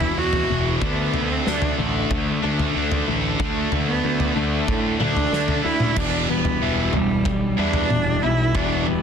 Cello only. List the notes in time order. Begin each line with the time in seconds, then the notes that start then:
Already playing: E4
0.18 F#4
0.82 B3
1.32 C4
1.48 D4
1.79 A3
3.41 A3
3.87 B3
4.35 A3
5.01 D4
5.65 E4
5.97 D4
6.30 B3
6.95 G3
7.58 D4
8.22 E4
8.55 D4
8.86 B3